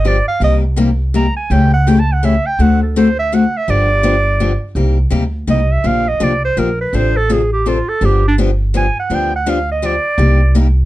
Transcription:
Already playing: upright bass G1
0.05 steel-string acoustic guitar D3 F3 B3 D4 G4, clarinet D5
0.28 clarinet F5
0.40 upright bass C2, steel-string acoustic guitar C3 G3 A#3 D#4 G4, clarinet D#5
0.76 steel-string acoustic guitar C3 G3 A#3 D#4 G4
1.14 steel-string acoustic guitar C3 G3 A#3 D#4 G4, clarinet A#5
1.37 clarinet G#5
1.50 upright bass C#2, steel-string acoustic guitar C#3 E3 A3 C#4 G4, clarinet G5
1.74 clarinet F#5
1.87 steel-string acoustic guitar C#3 E3 A3 C#4 G4, clarinet G5
2.00 clarinet A5
2.13 clarinet F#5
2.23 steel-string acoustic guitar C#3 E3 A3 C#4 G4, clarinet E5
2.46 clarinet G5
2.59 upright bass D2, steel-string acoustic guitar D3 A3 C4 F#4 A4, clarinet F#5
2.83 clarinet A4
2.96 steel-string acoustic guitar D3 A3 C4 F#4 A4, clarinet C5
3.19 clarinet E5
3.32 steel-string acoustic guitar D3 A3 C4 F#4 A4, clarinet F#5
3.57 clarinet E5
3.68 upright bass G1, steel-string acoustic guitar D3 F3 B3 D4 G4, clarinet D5
4.03 steel-string acoustic guitar D3 F3 B3 D4 G4
4.40 steel-string acoustic guitar D3 F3 B3 D4 G4
4.75 upright bass C2, steel-string acoustic guitar C3 G3 A#3 D#4 G4
5.10 upright bass D2, steel-string acoustic guitar C3 G3 A#3 D#4 G4
5.47 upright bass C2, steel-string acoustic guitar C3 G3 A#3 D#4 G4, clarinet D#5
5.72 clarinet E5
5.84 upright bass A#1, steel-string acoustic guitar D3 F3 A#3 D4 G4, clarinet F5
6.08 clarinet D#5
6.20 upright bass C2, steel-string acoustic guitar D3 F3 A#3 D4 G4, clarinet D5
6.45 clarinet C5
6.57 upright bass A#1, steel-string acoustic guitar D3 F3 A#3 D4 G4, clarinet A#4
6.81 clarinet B4
6.93 upright bass A1, steel-string acoustic guitar C3 F3 C4 D4 A4, clarinet C5
7.17 clarinet A4
7.29 steel-string acoustic guitar C3 F3 C4 D4 A4, clarinet G#4
7.53 clarinet G4
7.66 steel-string acoustic guitar C3 F3 C4 D4 A4, clarinet F4
7.89 clarinet A4
8.01 upright bass G1, steel-string acoustic guitar D3 F3 B3 D4 G4
8.05 clarinet G4
8.28 clarinet D4
8.38 steel-string acoustic guitar D3 F3 B3 D4 G4
8.74 steel-string acoustic guitar D3 F3 B3 D4 G4, clarinet G#5
8.99 clarinet F#5
9.10 upright bass D2, steel-string acoustic guitar D3 F3 B3 D4 G4
9.15 clarinet G5
9.36 clarinet F#5
9.46 steel-string acoustic guitar D3 F3 B3 D4 G4, clarinet F5
9.72 clarinet D#5
9.82 steel-string acoustic guitar D3 F3 B3 D4 G4, clarinet D5
10.18 upright bass C2, steel-string acoustic guitar C3 G3 A#3 D#4 G4
10.55 steel-string acoustic guitar C3 G3 A#3 D#4 G4

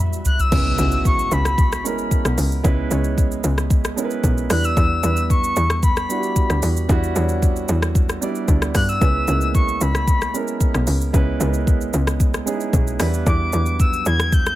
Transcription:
Already playing: string machine E2 E3 G3 F#4 E5, grand piano F#3 G3 B3 D4 E4 B4 E5
0.00 grand piano B5
0.13 shaker
0.25 soft synth lead F#6, floor tom, shaker
0.39 soft synth lead E6, floor tom, shaker
0.51 log drum bass C#2, grand piano G#3 B3 C#4 E4 B4, kick, crash, impact, shaker
0.78 log drum bass C#2, grand piano G#3 B3 C#4 E4 F#4, shaker
0.92 soft synth lead E6, shaker
1.05 soft synth lead C#6, kick, shaker
1.19 shaker
1.31 log drum bass C#2, soft synth lead B5, shaker
1.45 cross-stick, shaker
1.58 kick, shaker
1.72 cross-stick, shaker
1.84 grand piano G#3 B3 C#4 E4 A#4, shaker
1.98 shaker
2.11 kick, shaker
2.25 log drum bass B1, cross-stick, shaker
2.38 log drum bass C#2, open hi-hat, shaker
2.52 shaker
2.63 log drum bass C#2, grand piano G#3 B3 C#4 E4 B4, kick, shaker
2.90 log drum bass C#2, grand piano G#3 B3 C#4 E4 C#5, shaker
3.04 shaker
3.18 kick, shaker
3.31 shaker
3.44 log drum bass C#2, shaker
3.58 cross-stick, shaker
3.70 kick, shaker
3.84 cross-stick, shaker
3.96 grand piano G#3 B3 C#4 E4 A#4, shaker
4.04 grand piano B4
4.10 shaker
4.24 log drum bass B1, kick, shaker
4.38 shaker
4.50 log drum bass E2, grand piano G3 B3 D4 E4 B4, soft synth lead F#6, cross-stick, open hi-hat, shaker
4.64 soft synth lead E6, shaker
4.77 log drum bass E2, kick, shaker
5.03 log drum bass E2, grand piano G3 B3 D4 E4 B4, shaker
5.16 soft synth lead E6, shaker
5.30 soft synth lead C#6, kick, shaker
5.44 shaker
5.56 log drum bass E2, shaker
5.70 cross-stick, shaker
5.83 soft synth lead B5, kick, shaker
5.97 cross-stick, shaker
6.09 grand piano G3 B3 D4 E4 F#4, shaker
6.17 grand piano G4
6.23 shaker
6.36 kick, shaker
6.50 log drum bass D2, cross-stick, shaker
6.62 log drum bass E2, open hi-hat, shaker
6.77 shaker
6.89 log drum bass E2, grand piano G3 B3 D4 E4 F#4, kick, shaker
7.03 shaker
7.15 log drum bass E2, grand piano G3 B3 D4 E4 C#5, shaker
7.29 shaker
7.42 kick, shaker
7.56 shaker
7.68 log drum bass E2, shaker
7.82 cross-stick, shaker
7.95 kick, shaker
8.09 cross-stick, shaker
8.21 grand piano G3 B3 D4 E4 D5, shaker
8.35 shaker
8.48 log drum bass D2, kick, shaker
8.62 cross-stick, shaker
8.75 log drum bass G2, soft synth lead F#6, kick, cross-stick, open hi-hat, shaker
8.89 soft synth lead E6, shaker
9.01 log drum bass C#2, grand piano G#3 B3 C#4 E4 B4, kick, shaker
9.27 log drum bass C#2, grand piano G#3 A#3 B3 C#4 E4, shaker
9.41 soft synth lead E6, shaker
9.55 soft synth lead C#6, kick, shaker
9.68 shaker
9.75 soft synth lead C#6
9.81 log drum bass C#2, soft synth lead B5, shaker
9.95 cross-stick, shaker
10.07 kick, shaker
10.21 cross-stick, shaker
10.34 grand piano G#3 B3 C#4 E4 A#4, shaker
10.48 shaker
10.60 kick, shaker
10.74 log drum bass B1, cross-stick, shaker
10.87 log drum bass C#2, open hi-hat, shaker
11.01 shaker
11.13 log drum bass C#2, grand piano G#3 B3 C#4 E4 B4, kick, shaker
11.40 log drum bass C#2, grand piano G#3 B3 C#4 E4 A#4, shaker
11.48 grand piano B4
11.54 shaker
11.67 kick, shaker
11.81 shaker
11.93 log drum bass C#2, shaker
12.07 cross-stick, shaker
12.20 kick, shaker
12.34 cross-stick, shaker
12.46 grand piano G#3 B3 C#4 D#4 G#4, shaker
12.53 grand piano E4
12.60 shaker
12.73 log drum bass B1, kick, shaker
12.87 shaker
12.99 log drum bass E2, grand piano G3 B3 D4 E4 B4, cross-stick, open hi-hat, shaker
13.14 shaker
13.26 log drum bass E2, soft synth lead D6, kick, shaker
13.52 log drum bass E2, grand piano F#3 B3 D4 E4 B4, shaker
13.59 grand piano G3
13.66 shaker
13.80 soft synth lead E6, kick, shaker
13.93 shaker
14.06 log drum bass E2, soft synth lead G#6, shaker
14.20 cross-stick, shaker
14.32 soft synth lead G6, kick, shaker
14.46 cross-stick, shaker

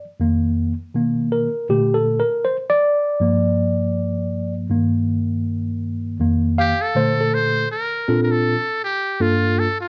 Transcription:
0.20 tine electric piano F2 D#3 A#3
0.95 tine electric piano B2 D#3 A#3
1.32 tine electric piano A#4
1.69 tine electric piano A#2 D3 A3 G4
1.94 tine electric piano A4
2.20 tine electric piano A#4
2.45 tine electric piano C5
2.70 tine electric piano D5
3.20 tine electric piano G2 F3 A#3
4.70 tine electric piano G2 D#3 A#3
6.20 tine electric piano F2 D#3 A#3
6.58 muted trumpet G4, tine electric piano F5
6.81 muted trumpet A4
6.95 tine electric piano A#2 D3 A3 C5
7.21 tine electric piano A4
7.34 muted trumpet C5
7.71 muted trumpet A#4
8.08 tine electric piano A#2 C4 D4 F4 A4
8.23 muted trumpet A#4
8.31 muted trumpet A4
8.84 muted trumpet G4
9.20 tine electric piano G2 A#3 D4 F4 A4, muted trumpet F4
9.59 muted trumpet A4
9.81 muted trumpet F4

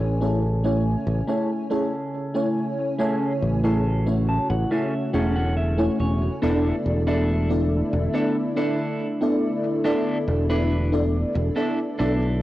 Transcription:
Already playing: analog synth pad C#3 A3 G#5, fm electric piano A3 C#4 E4 C#5 G#5
0.00 fingered electric bass A1
0.20 fm electric piano A3 C#4 E4 G#4 C#5, clean electric guitar C#4 G#4 A4, cabasa
0.42 cabasa
0.63 fm electric piano A3 C#4 E4 C#5 G#5, cabasa
1.07 fingered electric bass A1, muted clean electric guitar stroke, cabasa
1.27 fm electric piano A3 C#4 E4 C#5 G#5, clean electric guitar C#4 G#4 A4, cabasa
1.50 cabasa
1.70 fm electric piano A3 C#4 E4 G#4 C#5, clean electric guitar C#4 G#4 A4
1.93 cabasa
2.14 cabasa
2.34 fm electric piano A3 C#4 E4 C#5 G#5, cabasa
2.79 cabasa
2.98 fm electric piano A3 C#4 E4 C#5 G#5, clean electric guitar C#4 G#4 A4, analog synth pad F#4, cabasa
3.22 cabasa
3.42 fingered electric bass A1
3.63 fm electric piano A3 C#4 E4 G#4 C#5, clean electric guitar C#4 G#4 A4, cabasa
3.86 cabasa
4.06 fm electric piano A3 C#4 E4 C#5, cabasa
4.29 clean electric guitar A5
4.50 fingered electric bass A1, clean electric guitar F#5, muted clean electric guitar stroke, cabasa
4.71 fm electric piano A3 C#4 E4 C#5, clean electric guitar C#4 G#4 A4 E5, cabasa
4.93 cabasa
5.13 fingered electric bass E1, fm electric piano A3 C#4 E4 G#4 C#5, clean electric guitar C#4 G#4 A4 F#5
5.36 clean electric guitar F#5, cabasa
5.57 clean electric guitar E5, cabasa
5.77 fm electric piano A3 C#4 E4 C#5 G#5, cabasa
6.00 fingered electric bass E1, clean electric guitar C#5
6.21 cabasa
6.42 fingered electric bass E1, analog synth pad D3 A3 E4, fm electric piano B3 D4 E4 A4 D5, clean electric guitar D4 E4 A4
6.64 cabasa
6.86 fingered electric bass E1
7.07 fm electric piano B3 D4 E4 A4 D5, clean electric guitar D4 E4 A4, cabasa
7.28 cabasa
7.49 fm electric piano B3 D4 E4 A4 D5, cabasa
7.92 fingered electric bass E1, muted clean electric guitar stroke, cabasa
8.13 fm electric piano B3 D4 E4 A4 D5, clean electric guitar D4 E4 A4, cabasa
8.35 cabasa
8.56 fm electric piano B3 D4 E4 A4 D5, clean electric guitar D4 E4 A4
8.78 cabasa
8.99 cabasa
9.21 fm electric piano B3 D4 E4 A4 D5, cabasa
9.64 cabasa
9.84 fm electric piano B3 D4 E4 A4 D5, clean electric guitar D4 E4 A4, cabasa
10.07 cabasa
10.28 fingered electric bass E1
10.49 fm electric piano B3 D4 E4 A4 D5, clean electric guitar D4 E4 B4, cabasa
10.71 cabasa
10.92 fm electric piano B3 D4 E4 A4 D5, cabasa
11.35 fingered electric bass E1, muted clean electric guitar stroke, cabasa
11.56 fm electric piano B3 D4 E4 A4 D5, clean electric guitar D4 E4 A4, cabasa
11.79 cabasa
11.99 fingered electric bass B1, fm electric piano B3 D4 E4 A4 D5, clean electric guitar D4 E4 A4
12.22 cabasa

